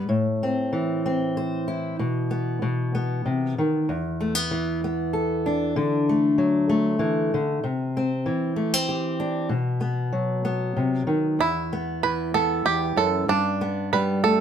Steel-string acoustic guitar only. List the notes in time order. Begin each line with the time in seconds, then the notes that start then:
0.09 A2
0.43 C4
0.73 E3
1.06 C4
1.37 C5
1.68 E4
1.99 B2
2.31 B3
2.62 B2
2.95 B3
3.25 C3
3.58 D#3
3.89 E2
4.21 A3
4.35 B3
4.51 E3
4.84 B3
5.13 A4
5.46 D4
5.76 D3
6.09 A3
6.38 F#3
6.69 A3
6.99 E3
7.34 D3
7.64 C3
7.97 C4
8.26 E3
8.56 A3
8.74 C4
8.89 G4
9.20 D4
9.49 B2
9.81 B3
10.12 F#3
10.45 B3
10.77 C3
11.07 D#3
11.39 E2
11.73 B3
12.03 E3
12.34 B3
12.65 E2
12.96 F#2
13.28 G2
13.61 B3
13.93 G3
14.24 A3